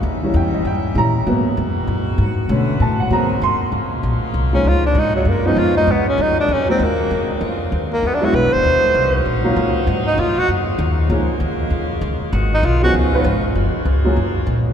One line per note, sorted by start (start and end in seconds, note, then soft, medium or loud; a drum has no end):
0.00 0.33 D#2 medium
0.00 1.25 G3 medium
0.00 1.25 C#4 medium
0.00 1.24 D#4 medium
0.00 1.25 E4 medium
0.23 0.63 E3 medium
0.23 0.63 G3 soft
0.23 0.64 C#4 medium
0.34 0.52 E2 medium
0.34 0.54 G5 medium
0.54 0.65 D#5 medium
0.54 muted upright bass stroke soft
0.65 0.95 G2 medium
0.65 0.95 G5 medium
0.95 1.25 A#2 medium
0.95 1.13 E3 soft
0.95 1.13 G3 soft
0.95 1.14 C#4 medium
0.95 1.43 A#5 medium
1.26 1.56 G#2 medium
1.26 2.32 B2 medium
1.26 1.49 F#3 medium
1.26 2.32 G#3 medium
1.26 1.49 A#3 medium
1.26 2.32 A#3 medium
1.26 1.50 B3 medium
1.26 3.70 F#4 medium
1.57 1.87 F2 medium
1.87 2.17 F#2 medium
2.18 2.48 G#2 medium
2.49 2.79 B2 loud
2.49 2.72 D3 medium
2.49 3.11 D3 medium
2.49 2.72 A3 soft
2.49 3.11 A3 medium
2.49 3.10 B3 medium
2.49 2.73 C#4 medium
2.80 3.10 A2 medium
2.80 3.00 A5 medium
3.00 3.11 F#5 medium
3.10 3.41 G#2 medium
3.10 3.72 D#3 medium
3.10 3.34 F#3 soft
3.10 3.70 G#3 medium
3.10 3.34 A#3 soft
3.10 3.72 C4 medium
3.10 3.34 C4 medium
3.10 3.41 A#5 medium
3.42 3.71 F#2 medium
3.42 3.66 C6 medium
3.71 4.02 C#2 medium
3.71 7.98 G#3 medium
3.71 4.94 A#3 medium
3.71 4.94 C#4 medium
3.71 4.94 F4 medium
4.03 4.21 A#1 medium
4.22 muted upright bass stroke soft
4.34 4.63 C2 medium
4.53 4.93 F3 medium
4.53 4.93 G#3 medium
4.53 4.93 A#3 medium
4.53 4.93 C#4 medium
4.53 4.70 C#4 medium
4.53 4.94 D#4 medium
4.64 4.94 C#2 medium
4.68 4.86 F4 loud
4.86 5.00 D4 medium
4.95 5.24 G#2 medium
4.95 5.57 D#3 medium
4.95 6.17 B3 medium
4.95 5.15 D#4 loud
4.95 5.56 F#4 medium
5.16 5.30 F#3 medium
5.25 5.55 F#2 medium
5.25 5.48 A#3 medium
5.45 5.74 F3 medium
5.45 5.74 G#3 medium
5.45 5.75 B3 medium
5.45 5.75 C#4 medium
5.45 5.60 D#4 medium
5.45 5.75 D#4 medium
5.56 5.87 F2 medium
5.56 6.18 C#3 medium
5.56 6.18 F4 medium
5.56 5.76 F4 loud
5.76 5.87 F3 medium
5.76 5.87 G#3 medium
5.76 5.87 B3 medium
5.76 5.87 C#4 medium
5.76 5.92 D#4 medium
5.76 5.87 D#4 medium
5.87 6.17 G#2 medium
5.87 6.08 B3 medium
6.09 6.23 C#4 medium
6.18 6.48 F#2 medium
6.18 8.01 D#3 medium
6.18 7.41 A#3 medium
6.18 6.39 D#4 loud
6.18 7.40 F#4 medium
6.40 6.54 D4 medium
6.48 6.79 F2 medium
6.53 6.69 C#4 medium
6.68 6.79 F#3 medium
6.68 6.79 G#3 medium
6.68 6.79 A#3 medium
6.68 6.85 C4 medium
6.68 6.79 C#4 medium
6.68 6.79 D#4 medium
6.79 7.09 D#2 medium
6.84 7.32 A#3 medium
7.11 7.29 C#2 medium
7.30 muted upright bass stroke soft
7.41 7.71 F2 medium
7.41 8.03 C4 medium
7.41 8.03 F4 medium
7.72 8.02 D#2 loud
7.93 8.08 A#3 medium
8.03 8.33 E2 medium
8.03 8.46 D3 medium
8.03 11.08 F#3 medium
8.03 8.46 G#3 medium
8.03 8.16 B3 medium
8.03 8.46 E4 medium
8.14 8.26 D4 medium
8.21 8.62 F#3 medium
8.21 8.62 G#3 medium
8.21 8.62 B3 medium
8.21 8.62 D4 medium
8.21 8.62 E4 medium
8.21 8.37 F#4 medium
8.33 8.45 B1 medium
8.33 8.55 B4 medium
8.43 8.53 G#1 medium
8.53 8.63 E1 medium
8.53 9.26 C5 loud
8.63 8.76 D#2 medium
8.63 9.86 A#3 medium
8.63 9.86 C#4 medium
8.63 11.07 D#4 medium
8.74 8.84 C#2 medium
8.85 8.94 A#1 medium
8.95 9.25 C2 medium
9.26 9.56 A#1 medium
9.44 9.84 F#3 medium
9.44 9.85 A#3 medium
9.44 9.85 C#4 medium
9.44 9.85 D#4 medium
9.44 9.85 F4 medium
9.56 9.86 C#2 medium
9.87 10.17 G#2 medium
9.87 11.09 C3 medium
9.87 12.91 G#3 medium
10.07 10.21 D#4 medium
10.18 10.36 F2 loud
10.18 10.40 F4 medium
10.36 10.49 F#4 loud
10.36 muted upright bass stroke soft
10.48 10.78 F#2 medium
10.79 11.09 D#2 loud
11.09 11.39 C#2 loud
11.09 12.31 C#3 medium
11.09 11.27 F3 medium
11.09 12.32 A#3 medium
11.09 11.28 A#3 medium
11.09 11.28 C#4 medium
11.09 11.28 D#4 medium
11.09 12.31 F4 medium
11.09 11.28 G#4 medium
11.40 11.70 D#2 loud
11.70 12.01 F2 medium
12.01 12.20 C#2 loud
12.21 muted upright bass stroke soft
12.33 12.63 G#1 loud
12.33 12.93 D#3 medium
12.33 13.54 B3 medium
12.33 12.94 F#4 medium
12.54 12.67 D#4 loud
12.63 12.93 B1 loud
12.63 12.83 F4 medium
12.82 13.11 F3 medium
12.82 13.11 B3 medium
12.82 13.11 C#4 medium
12.82 13.12 D#4 medium
12.82 12.94 F#4 loud
12.82 13.12 G#4 medium
12.94 13.24 C#2 medium
12.94 13.55 D#3 medium
12.94 13.55 C#4 medium
12.94 13.55 F4 medium
13.13 13.24 F3 medium
13.13 13.24 B3 medium
13.13 13.24 C#4 medium
13.13 13.24 D#4 medium
13.13 13.24 B4 medium
13.24 13.54 G#1 loud
13.55 13.73 F#1 medium
13.55 14.61 G#3 medium
13.55 14.61 A#3 medium
13.55 14.61 F4 medium
13.55 14.61 F#4 medium
13.74 muted upright bass stroke soft
13.85 14.16 C#2 medium
14.04 14.15 F#3 medium
14.04 14.16 A#3 medium
14.04 14.16 C#4 medium
14.04 14.16 F4 medium
14.04 14.16 G#4 medium
14.16 14.46 F#2 medium
14.47 14.73 A#2 medium